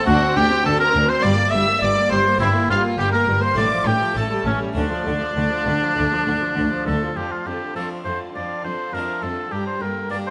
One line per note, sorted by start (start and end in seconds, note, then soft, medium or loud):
0.02 1.18 A3 medium
0.02 1.19 C4 medium
0.02 1.19 D4 medium
0.02 0.35 F#5 loud
0.07 0.15 D2 medium
0.07 0.33 D2 medium
0.07 0.21 D4 medium
0.07 0.35 F#4 medium
0.07 0.36 F#4 medium
0.21 0.36 C4 medium
0.35 0.44 D2 medium
0.35 0.50 D4 medium
0.35 0.65 G4 loud
0.35 0.65 G5 loud
0.51 0.65 C4 medium
0.65 0.91 D2 medium
0.65 0.73 D2 medium
0.65 0.74 D2 medium
0.65 0.78 D4 medium
0.65 0.79 A4 loud
0.65 0.80 A4 medium
0.65 0.80 A5 loud
0.79 0.94 C4 medium
0.79 1.09 A#4 loud
0.79 1.11 A#4 loud
0.79 1.09 A#5 loud
0.94 1.02 D2 medium
0.94 1.03 D2 medium
0.94 1.21 D2 medium
0.94 1.08 D4 medium
1.08 1.23 C4 medium
1.08 1.22 C5 medium
1.08 1.25 C5 medium
1.08 1.23 C6 loud
1.20 1.49 G2 medium
1.20 1.36 G3 medium
1.20 2.35 A#3 medium
1.20 2.35 D4 medium
1.20 1.52 D5 loud
1.20 1.53 D5 loud
1.20 1.53 D6 loud
1.24 1.32 G1 medium
1.24 1.32 G2 medium
1.37 1.52 A#3 medium
1.51 1.61 G1 medium
1.51 1.79 G2 medium
1.51 1.62 G2 medium
1.51 1.67 G3 medium
1.51 1.81 E5 loud
1.51 1.81 E5 medium
1.51 1.82 E6 loud
1.67 1.82 A#3 medium
1.81 1.90 G1 medium
1.81 2.08 G2 medium
1.81 1.90 G2 medium
1.81 1.95 G3 medium
1.81 2.11 D5 loud
1.81 2.10 D5 loud
1.81 2.11 D6 loud
1.96 2.11 A#3 medium
2.10 2.19 G1 medium
2.10 2.37 G2 medium
2.10 2.20 G2 medium
2.10 2.26 G3 medium
2.10 2.40 C5 medium
2.10 2.39 C5 loud
2.10 2.20 C6 loud
2.27 2.41 A#3 medium
2.37 2.48 G1 medium
2.37 2.67 G2 medium
2.37 2.49 G2 medium
2.37 2.54 G3 medium
2.37 3.52 A#3 medium
2.37 2.69 E4 medium
2.37 2.69 E4 loud
2.37 3.52 G4 medium
2.42 2.50 E5 loud
2.56 2.70 A#3 medium
2.68 2.76 G1 medium
2.68 2.96 G2 medium
2.68 2.78 G2 medium
2.68 2.84 G3 medium
2.68 2.98 F4 medium
2.68 2.83 F4 medium
2.68 2.79 F5 loud
2.84 2.98 A#3 medium
2.97 3.06 G1 medium
2.97 3.25 G2 medium
2.97 3.07 G2 medium
2.97 3.12 G3 medium
2.97 3.12 G4 loud
2.97 3.11 G4 medium
2.97 3.04 G5 loud
3.12 3.28 A#3 medium
3.12 3.41 A#4 medium
3.12 3.22 A#5 medium
3.26 3.34 G1 medium
3.26 3.54 G2 medium
3.26 3.36 G2 medium
3.26 3.42 G3 medium
3.42 3.57 A#3 medium
3.42 3.57 C5 medium
3.42 3.56 C5 medium
3.42 3.57 C6 medium
3.54 3.64 A1 medium
3.54 3.83 A2 medium
3.54 3.65 A2 medium
3.54 3.70 D3 medium
3.54 4.12 A3 medium
3.54 4.13 D4 medium
3.54 3.63 D5 loud
3.54 3.89 D5 medium
3.54 3.86 D6 loud
3.72 3.86 F3 medium
3.85 3.93 A1 medium
3.85 3.94 A2 medium
3.85 4.13 A2 medium
3.85 4.01 D3 medium
3.85 4.15 G4 medium
3.85 4.17 G4 medium
3.85 4.16 G5 loud
4.01 4.16 F3 medium
4.13 4.24 A1 medium
4.13 4.43 A2 medium
4.13 4.24 A2 medium
4.13 4.72 A3 medium
4.13 4.30 A3 medium
4.13 4.74 C#4 medium
4.13 4.45 A4 medium
4.17 4.46 A4 medium
4.17 4.47 A5 medium
4.30 4.45 G3 medium
4.45 4.53 A1 medium
4.45 4.53 A2 medium
4.45 4.73 A2 medium
4.45 4.60 A3 medium
4.45 4.76 C#4 medium
4.45 4.60 C#4 medium
4.45 4.77 C#5 medium
4.59 4.75 G3 medium
4.73 4.84 D2 medium
4.73 4.84 D3 medium
4.73 5.04 D3 medium
4.73 7.12 A3 medium
4.73 4.90 A3 medium
4.73 7.12 D4 medium
4.73 6.88 D4 medium
4.73 6.83 D5 loud
4.77 6.84 D4 medium
4.89 5.05 F3 medium
5.04 5.14 D2 medium
5.04 5.14 D3 medium
5.04 5.34 D3 medium
5.04 5.21 A3 medium
5.20 5.36 F3 medium
5.35 5.45 D2 medium
5.35 5.44 D3 medium
5.35 5.64 D3 medium
5.35 5.50 A3 medium
5.51 5.67 F3 medium
5.66 5.75 D2 medium
5.66 5.74 D3 medium
5.66 5.94 D3 medium
5.66 5.82 A3 medium
5.81 5.97 F3 medium
5.96 6.05 D2 medium
5.96 6.04 D3 medium
5.96 6.24 D3 medium
5.96 6.11 A3 medium
6.12 6.27 F3 medium
6.26 6.35 D2 medium
6.26 6.34 D3 medium
6.26 6.54 D3 medium
6.26 6.42 A3 medium
6.42 6.57 F3 medium
6.55 6.65 D2 medium
6.55 6.63 D3 medium
6.55 6.84 D3 medium
6.55 6.71 A3 medium
6.71 6.87 F3 medium
6.86 6.95 D2 medium
6.86 6.94 D3 medium
6.86 7.14 D3 medium
6.86 7.02 A3 medium
6.86 7.18 A4 medium
7.01 7.15 F3 medium
7.16 7.25 F2 soft
7.16 7.43 F2 soft
7.16 7.44 F3 soft
7.16 7.44 D4 soft
7.16 7.34 G4 medium
7.16 7.45 F5 soft
7.32 7.48 F4 medium
7.45 7.54 F2 soft
7.45 7.73 F2 soft
7.45 7.76 D3 soft
7.45 7.75 F4 soft
7.45 7.76 G4 medium
7.45 7.75 A5 soft
7.75 7.83 F2 soft
7.75 8.02 F2 soft
7.75 8.05 F3 soft
7.75 8.19 A3 soft
7.75 8.05 D4 soft
7.75 8.19 D4 soft
7.75 7.90 A4 medium
7.75 8.05 F5 soft
8.05 8.13 F2 soft
8.05 8.32 F2 soft
8.05 8.35 D3 soft
8.05 8.35 F4 soft
8.05 8.18 C5 medium
8.05 8.35 A5 soft
8.34 8.43 F2 soft
8.34 8.62 F2 soft
8.34 8.62 F3 soft
8.34 8.62 D4 soft
8.34 8.64 D5 medium
8.34 8.62 F5 soft
8.63 8.72 F2 soft
8.63 8.91 F2 soft
8.63 8.93 D3 soft
8.63 8.93 F4 soft
8.63 8.95 C5 medium
8.63 8.93 A5 soft
8.92 9.01 F2 soft
8.92 9.21 F2 soft
8.92 9.23 F3 soft
8.92 9.37 A3 soft
8.92 9.23 D4 soft
8.92 9.37 D4 soft
8.92 9.25 A#4 medium
8.92 9.22 F5 soft
9.22 9.30 F2 soft
9.22 9.49 F2 soft
9.22 9.52 D3 soft
9.22 9.53 F4 soft
9.22 9.53 A4 medium
9.22 9.52 A5 soft
9.52 9.60 G2 soft
9.52 9.78 G2 soft
9.52 9.80 G3 soft
9.52 9.79 D4 soft
9.52 9.66 G4 medium
9.52 9.80 A#5 soft
9.67 9.83 C5 medium
9.81 9.89 G2 soft
9.81 10.08 G2 soft
9.81 10.11 D3 soft
9.81 10.12 A#3 soft
9.81 10.10 A#4 medium
9.81 10.11 G5 soft
10.10 10.30 G2 soft
10.10 10.19 G2 soft
10.10 10.30 G3 soft
10.10 10.30 A#3 soft
10.10 10.30 D4 soft
10.10 10.18 D5 medium
10.10 10.30 A#5 soft
10.27 10.30 C5 medium